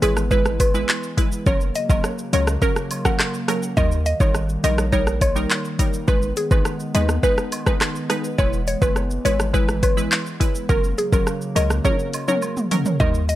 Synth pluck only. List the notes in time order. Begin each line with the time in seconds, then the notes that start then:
0.02 G#4
0.31 B4
0.60 B4
1.46 C#5
1.76 D#5
1.90 D#5
2.33 C#5
2.62 A#4
3.05 F#5
3.77 D#5
4.06 D#5
4.20 C#5
4.64 D#5
4.92 C#5
5.22 C#5
6.08 B4
6.37 G#4
6.51 B4
6.95 D#5
7.23 B4
7.67 B4
8.38 C#5
8.68 C#5
8.82 B4
9.25 C#5
9.54 B4
9.83 B4
10.69 A#4
10.98 G#4
11.13 A#4
11.56 D#5
11.85 C#5
12.28 C#5
13.00 D#5
13.29 D#5